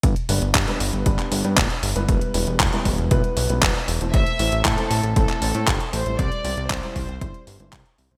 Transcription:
<<
  \new Staff \with { instrumentName = "Violin section" } { \time 4/4 \key g \major \tempo 4 = 117 r1 | r1 | e''4 a'4 a'4. c''8 | d''4 c''2 r4 | }
  \new Staff \with { instrumentName = "Grand piano" } { \time 4/4 \key g \major r8 <g b d' b'>8 r16 <g b d' b'>8. <g b d' b'>8. <g b d' b'>8 r8 <g b e' b'>16~ | <g b e' b'>8 <g b e' b'>8 r16 <g b e' b'>8. <g b e' b'>8. <g b e' b'>8 r8 <a c' e' c''>16~ | <a c' e' c''>8 <a c' e' c''>8 r16 <a c' e' c''>8. <a c' e' c''>8. <a c' e' c''>8 r8 <g c' e' c''>16~ | <g c' e' c''>8 <g c' e' c''>8 r16 <g c' e' c''>8. <g c' e' c''>8. <g c' e' c''>8 r8 <g c' e' c''>16 | }
  \new Staff \with { instrumentName = "Analog synth bass" } { \clef bass \time 4/4 \key g \major g,,16 r16 g,,16 g,,16 g,16 r16 g,,16 g,,16 g,,16 r16 g,,16 g,16 d,,16 r16 g,,16 g,,16 | e,,16 r16 e,,16 e,,16 e,,16 r16 e,,16 e,,16 b,,16 r16 b,,16 b,,16 e,,16 r16 e,,16 e,,16 | a,,16 r16 a,,16 a,,16 a,16 r16 a,,16 a,,16 a,,16 r16 a,,16 a,16 g,,16 r16 a,,16 a,,16 | c,16 r16 c,16 c,16 c,16 r16 c,16 c,16 g,,16 r16 g,,16 g,,16 c,16 r16 c,16 c,16 | }
  \new DrumStaff \with { instrumentName = "Drums" } \drummode { \time 4/4 <hh bd>16 hh16 hho16 hh16 <hc hh bd>16 hh16 hho16 hh16 <hh bd>16 <hc hh>16 hho16 hh16 <hc hh bd>16 hh16 hho16 hh16 | <hh bd>16 hh16 hho16 hh16 <hc hh bd>16 hh16 <hho bd>16 hh16 <hh bd>16 hh16 hho16 hh16 <hc hh bd>16 hh16 hho16 hh16 | <hh bd>16 hh16 hho16 hh16 <hc hh bd>16 hh16 hho16 hh16 <hh bd>16 <hc hh>16 hho16 hh16 <hc hh bd>16 hh16 hho16 hh16 | <hh bd>16 hh16 hho16 hh16 <hc hh bd>16 hh16 <hho bd>16 hh16 <hh bd>16 hh16 hho16 hh16 <hc hh bd>16 hh16 hho16 hh16 | }
>>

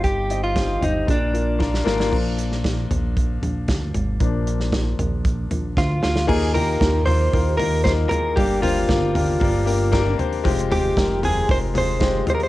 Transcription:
<<
  \new Staff \with { instrumentName = "Clean electric guitar" } { \time 4/4 \key bes \mixolydian \tempo 4 = 115 g'8. f'8. ees'8 d'4. r8 | r1 | r2. f'8 f'8 | aes'8 bes'4 c''4 bes'8 c''8 bes'8 |
g'8 f'2. r8 | r8 g'4 aes'8 c''8 c''4 c''32 bes'32 c''16 | }
  \new Staff \with { instrumentName = "Upright piano" } { \time 4/4 \key bes \mixolydian <c' ees' g' c''>8 <c' ees' g' ees''>8 <c' ees' g' c''>8 <c' ees' g' c''>8 <bes d' f' bes'>8 <bes d' f' bes'>8 <bes d' f' bes'>8 <bes d' f' bes'>8 | r1 | r1 | <bes ees' f' bes'>8 <bes ees' f' g'>8 <bes ees' f' bes'>8 <bes ees' f' bes'>8 <bes ees' f' bes'>8 <bes ees' f' bes'>8 <bes ees' f' bes'>8 <bes ees' f' aes'>8 |
<bes d' g' bes'>8 <bes d' g' c''>8 <bes d' g' bes'>8 <bes d' g' bes'>8 <bes d' g' bes'>8 <bes d' g' bes'>8 <bes d' g' bes'>8 <bes d' g' c''>8 | <aes c' f' g'>8 <aes c' f' g'>8 <aes c' f' bes'>8 <aes c' f' g'>8 <aes c' f' bes'>8 <aes c' f' aes'>8 <aes c' f' g'>8 <aes c' f' g'>8 | }
  \new Staff \with { instrumentName = "Upright piano" } { \clef bass \time 4/4 \key bes \mixolydian g,4 r4 bes,4. r8 | <f bes d'>8 r2. r8 | <f bes d'>8 r2. r8 | ees4. r2 r8 |
g,4. r2 r8 | r1 | }
  \new Staff \with { instrumentName = "Analog synth bass" } { \clef bass \time 4/4 \key bes \mixolydian g,,4. g,,8 bes,,4. aes,,8 | bes,,4. bes,,4 bes,,8 d,8 aes,,8 | bes,,4. bes,,4 bes,,8 d,8 d,8 | ees,4 ees,4 ees,4. r8 |
g,,4 g,,4 g,,4. r8 | f,,4 f,,4 f,,4. r8 | }
  \new DrumStaff \with { instrumentName = "Drums" } \drummode { \time 4/4 <hh bd>8 hh8 <hh bd sn>8 <hh tomfh>8 <hh bd>8 hh8 <bd sn>16 sn16 sn16 sn16 | <cymc bd>8 hh16 sn16 <hh bd sn>8 <hh tomfh>8 <hh bd>8 <hh tomfh>8 <hh bd sn>8 <hh tomfh>8 | <hh bd>8 hh16 sn16 <hh bd sn>8 <hh tomfh>8 <hh bd>8 <hh tomfh>8 <bd sn>8 sn16 sn16 | <cymc bd>8 <hho hhp tomfh>8 <hho hhp bd sn>8 <hho hhp tomfh>8 <hho hhp bd>8 <hho hhp tomfh>8 <hho hhp bd sn>8 <hho hhp tomfh>8 |
<hho hhp bd>8 <hho hhp tomfh>8 <bd sn>8 <hho hhp tomfh>8 <hho hhp bd>8 <hho hhp>8 <hho hhp bd sn>8 <hho hhp tomfh>16 hho16 | <hho hhp bd>16 hhp16 <hho hhp tomfh>8 <hho hhp bd sn>8 <hho hhp tomfh>8 <hho hhp bd>8 <hho hhp tomfh>8 <hho hhp bd sn>8 <hho hhp tomfh>16 hho16 | }
>>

